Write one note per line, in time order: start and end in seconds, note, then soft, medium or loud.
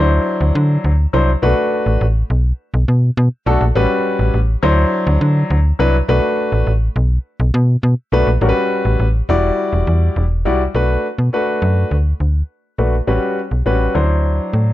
0.00 0.19 D2 loud
0.00 0.90 F#3 medium
0.00 0.90 D4 medium
0.00 0.90 E4 medium
0.00 0.91 C5 medium
0.41 0.52 D2 medium
0.55 0.78 D3 loud
0.84 1.07 D2 medium
1.13 1.36 C2 medium
1.13 1.29 F#3 medium
1.13 1.29 D4 medium
1.13 1.29 E4 medium
1.13 1.29 C5 medium
1.42 1.54 B1 loud
1.42 2.04 A3 medium
1.42 2.04 D4 medium
1.42 2.04 F#4 medium
1.42 2.04 B4 medium
1.86 1.98 A1 medium
2.01 2.23 A1 loud
2.30 2.53 B1 loud
2.74 2.85 B1 loud
2.88 3.11 B2 medium
3.17 3.29 B2 loud
3.46 3.58 B1 loud
3.46 3.62 A3 medium
3.46 3.62 D4 medium
3.46 3.62 F#4 medium
3.46 3.62 A4 loud
3.61 3.72 A#1 loud
3.75 3.87 A1 loud
3.75 4.37 G3 medium
3.75 4.37 C#4 medium
3.75 4.37 F#4 medium
3.75 4.37 B4 medium
4.19 4.31 A1 medium
4.34 4.56 A1 medium
4.63 4.85 D2 loud
4.63 5.56 F#3 loud
4.63 5.56 D4 medium
4.63 5.56 E4 medium
4.63 5.56 C5 loud
5.07 5.18 D2 loud
5.21 5.44 D3 loud
5.50 5.73 D2 loud
5.79 6.02 C2 medium
5.79 5.95 F#3 medium
5.79 5.95 D4 medium
5.79 5.95 E4 medium
5.79 5.95 B4 loud
6.08 6.20 B1 loud
6.08 6.70 A3 medium
6.08 6.70 D4 medium
6.08 6.70 F#4 medium
6.08 6.70 B4 loud
6.52 6.64 A1 medium
6.67 6.89 A1 medium
6.96 7.18 B1 loud
7.40 7.51 B1 loud
7.54 7.77 B2 loud
7.83 7.95 B2 loud
8.12 8.24 B1 medium
8.12 8.28 A3 medium
8.12 8.28 D4 medium
8.12 8.28 F#4 medium
8.12 8.28 B4 medium
8.27 8.38 A#1 medium
8.41 8.53 A1 loud
8.41 9.03 G3 medium
8.41 9.03 C#4 medium
8.41 9.03 F#4 medium
8.41 8.49 A#4 medium
8.49 9.06 B4 medium
8.85 8.96 A1 medium
9.00 9.22 A1 medium
9.29 9.51 E1 loud
9.29 10.22 G3 medium
9.29 10.22 E4 medium
9.29 10.22 F#4 medium
9.29 10.23 D5 loud
9.73 9.84 E1 loud
9.87 10.10 E2 medium
10.16 10.47 E1 loud
10.45 10.68 C2 medium
10.45 10.61 G3 medium
10.45 10.61 E4 medium
10.45 10.61 F#4 medium
10.45 10.61 D5 medium
10.75 10.97 B1 loud
10.75 11.05 A3 medium
10.75 11.05 D4 medium
10.75 11.05 F#4 medium
10.75 11.06 B4 medium
11.18 11.30 B2 medium
11.33 11.94 A3 medium
11.33 11.94 D4 medium
11.33 11.94 F#4 medium
11.33 11.95 B4 medium
11.62 11.84 F#2 medium
11.91 12.14 D2 medium
12.20 12.43 D2 medium
12.78 13.01 A#1 medium
12.78 12.94 A3 medium
12.78 12.94 D4 medium
12.78 12.94 F#4 medium
12.78 12.94 B4 medium
13.07 13.19 A1 medium
13.07 13.38 G3 medium
13.07 13.38 C#4 medium
13.07 13.38 F#4 medium
13.07 13.38 B4 medium
13.51 13.63 B1 medium
13.66 13.88 A1 medium
13.66 13.95 G3 medium
13.66 13.95 C#4 medium
13.66 13.95 F#4 medium
13.66 13.95 B4 medium
13.95 14.40 D2 medium
13.95 14.73 F#3 medium
13.95 14.73 D4 medium
13.95 14.73 E4 medium
13.95 14.73 C5 medium
14.53 14.73 A2 medium